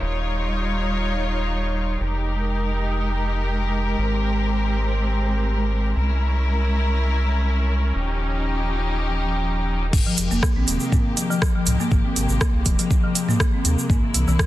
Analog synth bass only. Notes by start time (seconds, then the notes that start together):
0.01 D#1
2.00 F1
3.98 G#1
5.96 C2
7.95 D#1
9.93 F1
10.18 F1
10.31 F1
10.56 A#1
10.67 D#1
11.66 C2
11.92 G#1
12.16 G#1
12.29 G#1
12.54 C2
12.66 D#1
13.65 D#2
13.90 C2
14.15 C2
14.28 C2